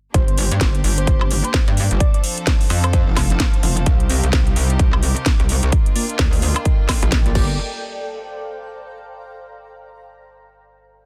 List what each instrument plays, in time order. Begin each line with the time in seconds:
0.14 wobble bass G1, string section A#3 D4 G4, ambient pad C5, soft synth lead C5, kick, closed hi-hat
0.28 closed hi-hat
0.38 open hi-hat
0.51 wobble bass G2, closed hi-hat
0.58 wobble bass G1, ambient pad F5, kick, snare, closed hi-hat
0.75 closed hi-hat
0.84 wobble bass G1, open hi-hat
0.98 soft synth lead C5, closed hi-hat
1.07 wobble bass G1, kick, closed hi-hat
1.21 high woodblock
1.31 open hi-hat
1.44 soft synth lead C5, closed hi-hat
1.54 kick, snare, closed hi-hat
1.68 wobble bass G2, closed hi-hat
1.77 open hi-hat
1.91 wobble bass G1, closed hi-hat
2.00 string section F3 C4 D4 A4, soft synth lead D5, kick, closed hi-hat
2.14 soft synth lead D5, closed hi-hat
2.21 ambient pad A5, open hi-hat
2.37 closed hi-hat
2.47 kick, snare, closed hi-hat
2.61 open hi-hat
2.70 wobble bass F2, open hi-hat
2.84 soft synth lead C5, closed hi-hat, high woodblock
2.93 soft synth lead C5, kick, closed hi-hat
3.07 wobble bass F1
3.17 kick, snare, open hi-hat, high woodblock
3.30 closed hi-hat
3.40 kick, snare, closed hi-hat
3.54 closed hi-hat
3.63 wobble bass F1, open hi-hat
3.77 closed hi-hat
3.86 wobble bass C2, string section C3 D#4 G4, ambient pad A#4, kick, closed hi-hat
4.00 ambient pad D#5, closed hi-hat
4.09 synth stab C4 G4 D#5, open hi-hat
4.23 wobble bass C2, closed hi-hat
4.33 wobble bass C2, kick, snare, closed hi-hat
4.47 closed hi-hat
4.54 wobble bass C2, ambient pad G5, open hi-hat
4.70 closed hi-hat
4.79 wobble bass C2, kick, closed hi-hat
4.93 high woodblock
5.03 open hi-hat
5.16 closed hi-hat
5.26 kick, snare, closed hi-hat
5.40 wobble bass C2, closed hi-hat
5.49 open hi-hat
5.63 wobble bass C2, closed hi-hat
5.72 string section A#3 D4 F4, ambient pad A4, kick, closed hi-hat
5.84 ambient pad D5, closed hi-hat
5.96 synth stab A#3 F4 D5, open hi-hat
6.09 closed hi-hat
6.19 wobble bass D2, kick, snare, closed hi-hat
6.33 open hi-hat
6.42 open hi-hat
6.56 closed hi-hat, high woodblock
6.65 kick, closed hi-hat
6.89 kick, snare, open hi-hat, high woodblock
7.02 wobble bass A#1, closed hi-hat
7.12 kick, snare, closed hi-hat
7.26 synth stab A#3 F4 D5, closed hi-hat
7.35 wobble bass G1, string section G3 G4 A#4 D5, synth stab A#3 G4 D5, ambient pad C5, kick, crash
7.43 ambient pad F5
7.74 ambient pad A#5